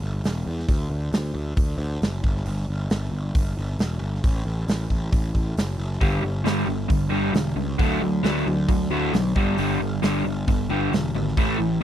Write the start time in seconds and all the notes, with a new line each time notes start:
0.02 G1
0.24 E1, snare, open hi-hat
0.46 E2
0.59 snare
0.68 D2, kick, open hi-hat
0.90 D2
1.12 D2, snare, open hi-hat
1.34 D2
1.57 D2, kick, open hi-hat
1.78 D2
2.02 F#1, snare, open hi-hat
2.23 G1, kick
2.36 snare
2.46 G1, open hi-hat
2.68 G1
2.90 G1, snare, open hi-hat
3.12 G1
3.35 G1, kick, open hi-hat
3.58 G1
3.79 E1, snare, open hi-hat
4.01 G1
4.15 snare
4.24 A1, kick, open hi-hat
4.45 A1
4.67 A1, snare, open hi-hat
4.90 A1, kick
5.12 A1, kick, open hi-hat
5.35 A1, kick
5.56 F#1, snare, open hi-hat
5.78 F#1
5.92 snare
6.01 G1 G2 D3 G3, kick, open hi-hat
6.22 G1 G2 D3
6.44 G1 G2 D3 G3, snare, open hi-hat
6.67 G1 G2 D3
6.89 G1 G2 D3, kick, open hi-hat
7.10 G1 G2 D3 G3
7.34 E1 G2 D3, snare, open hi-hat
7.56 C#2 G2 D3
7.78 D2 D3 F#3 A3, kick, open hi-hat
8.01 D2 D3 F#3
8.23 D2 D3 F#3 A3, snare, open hi-hat
8.47 D2 D3 F#3
8.68 D2 D3 F#3, kick, open hi-hat
8.90 D2 D3 F#3 A3
9.13 B1 D3 F#3, snare, open hi-hat
9.35 G1 G2 D3 G3, kick
9.57 G1 G2 D3 G3, open hi-hat
9.80 G1 G2 D3
10.02 G1 G2 D3 G3, snare, open hi-hat
10.25 G1 G2 D3
10.47 G1 G2 D3, kick, open hi-hat
10.69 G1 G2 D3 G3
10.92 E1 G2 D3, snare, open hi-hat
11.13 G#1 G2 D3
11.28 snare
11.37 A1 A2 E3 A3, kick, open hi-hat
11.58 A1 A2 E3